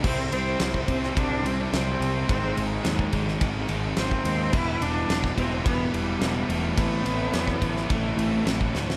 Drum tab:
CC |x---------------|----------------|x---------------|----------------|
RD |--x-x-x-x-x-x-x-|x-x-x-x-x-x-x-x-|--x-x-x-x-x-x-x-|x-x-x-x-x-x-x---|
SD |----o--o----o---|----o--o----o---|----o-------o---|----oo-o----o-oo|
BD |o----oo-o-------|o----oo-o----o--|o----oo-o-------|o----oo-o----o--|